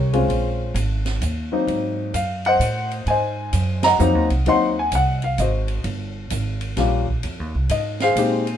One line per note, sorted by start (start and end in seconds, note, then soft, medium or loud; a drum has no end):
0.00 0.28 C2 medium
0.00 0.28 G4 soft
0.00 0.28 A#4 medium
0.00 0.26 C#5 medium
0.13 0.72 G#3 medium
0.13 0.72 C4 medium
0.13 0.73 C#4 medium
0.13 0.73 F4 medium
0.13 ride soft
0.28 0.74 A#1 medium
0.28 ride medium
0.74 1.20 G#1 medium
0.74 hi-hat pedal soft
0.74 ride medium
1.06 snare soft
1.06 ride soft
1.21 1.66 D#2 medium
1.21 hi-hat pedal medium
1.21 ride medium
1.52 2.11 F#3 medium
1.52 2.11 A#3 medium
1.52 2.11 C4 medium
1.52 2.12 D#4 medium
1.67 2.13 G#2 medium
1.67 ride soft
2.14 2.59 F#2 medium
2.14 2.46 F5 medium
2.14 hi-hat pedal medium
2.14 ride medium
2.45 3.05 C5 medium
2.45 3.05 D#5 medium
2.45 2.89 F#5 loud
2.45 ride soft
2.60 3.05 A2 medium
2.60 hi-hat pedal medium
2.60 ride medium
2.91 ride soft
3.06 3.51 G#2 medium
3.06 3.81 C5 medium
3.06 3.81 D#5 medium
3.06 3.86 G#5 medium
3.06 ride medium
3.53 3.98 F#2 medium
3.53 hi-hat pedal medium
3.53 ride medium
3.83 4.43 D#5 medium
3.83 4.43 F#5 medium
3.83 4.27 A#5 loud
3.83 snare medium
3.83 ride medium
3.99 4.15 F2 medium
3.99 4.26 F#3 medium
3.99 4.27 A#3 medium
3.99 4.27 C4 medium
3.99 4.27 D#4 medium
3.99 hi-hat pedal medium
4.15 4.29 D#2 medium
4.30 4.44 C2 medium
4.30 ride soft
4.46 4.90 D#2 medium
4.46 4.73 F#3 medium
4.46 4.74 A#3 medium
4.46 4.74 C4 medium
4.46 4.74 D#4 medium
4.46 5.19 D#5 medium
4.46 4.94 F#5 medium
4.46 4.75 C6 loud
4.46 ride medium
4.79 4.94 G#5 medium
4.92 5.37 C2 medium
4.92 5.22 F#5 medium
4.92 hi-hat pedal medium
4.92 ride medium
5.22 5.38 F5 medium
5.22 ride soft
5.38 5.83 G#1 medium
5.38 5.83 F#4 soft
5.38 5.83 C5 soft
5.38 5.82 D#5 medium
5.38 hi-hat pedal medium
5.38 ride medium
5.68 ride soft
5.84 6.29 G1 medium
5.84 ride medium
6.30 6.76 G#1 medium
6.30 hi-hat pedal medium
6.30 ride medium
6.61 ride medium
6.77 7.22 A#1 medium
6.77 7.04 G3 medium
6.77 7.05 A#3 medium
6.77 7.05 C#4 medium
6.77 7.05 F4 medium
6.77 snare soft
6.77 ride medium
7.07 kick medium
7.23 7.40 F2 medium
7.23 ride medium
7.40 7.54 D#2 medium
7.55 7.69 C2 medium
7.69 8.15 G#2 medium
7.69 8.02 D#5 medium
7.69 hi-hat pedal soft
7.69 ride medium
8.00 8.57 G#4 medium
8.00 8.57 C5 medium
8.00 8.57 F5 loud
8.00 snare medium
8.00 ride soft
8.16 8.57 A#2 medium
8.16 8.44 G#3 medium
8.16 8.44 C4 medium
8.16 8.44 D#4 medium
8.16 8.45 G4 medium
8.16 hi-hat pedal soft
8.16 ride medium
8.47 ride medium